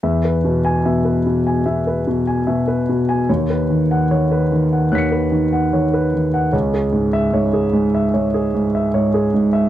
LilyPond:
<<
  \new Staff \with { instrumentName = "Grand piano" } { \time 4/4 \key e \major \tempo 4 = 74 << { r8. gis''8 r2 r8. | r8. fis''8 r8. <fis''' b''' cis''''>2 | r8. e''8 r2 r8. | } \\ { e''16 b'16 b,8 e''16 b'16 b,16 gis''16 e''16 b'16 b,16 gis''16 e''16 b'16 b,16 gis''16 | cis''16 b'16 dis8 cis''16 b'16 dis16 fis''16 cis''16 b'16 dis16 fis''16 cis''16 b'16 dis16 fis''16 | cis''16 gis'16 gis,8 cis''16 gis'16 gis,16 e''16 cis''16 gis'16 gis,16 e''16 cis''16 gis'16 gis,16 e''16 | } >> }
  \new Staff \with { instrumentName = "Grand piano" } { \clef bass \time 4/4 \key e \major e,4 b,4 b,4 b,4 | dis,4 dis4 dis,4 dis4 | cis,4 gis,4 gis,4 gis,4 | }
>>